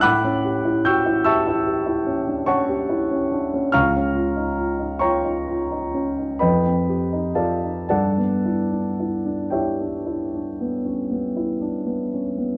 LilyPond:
\new Staff \with { instrumentName = "Grand piano" } { \time 9/8 \key a \mixolydian \tempo 4. = 43 << { <fis'' b'' d''' fis'''>4 <g'' cis''' e''' g'''>8 <e'' a'' cis''' e'''>4. <cis'' fis'' a'' cis'''>8 r4 | <eis'' ais'' cis''' eis'''>4. <cis'' g'' ais'' cis'''>4. <b' ees'' g'' b''>4 <a' d'' f'' a''>8 | <a' d'' fis'' a''>4. <g' cis'' e'' g''>2~ <g' cis'' e'' g''>8 r8 | } \\ { a,16 cis'16 g'16 e'16 fis'16 e'16 g'16 e'16 g'16 e'16 cis'16 d'16 cis'16 g'16 e'16 cis'16 d'16 cis'16 | cis,16 cis'16 eis'16 dis'16 eis'16 dis'16 eis'16 dis'16 eis'16 dis'16 cis'16 dis'16 f,16 c'16 g'16 ees'16 f'16 ees'16 | g,16 b16 e'16 d'16 e'16 d'16 e'16 d'16 e'16 d'16 b16 cis'16 b16 e'16 d'16 b16 cis'16 b16 | } >> }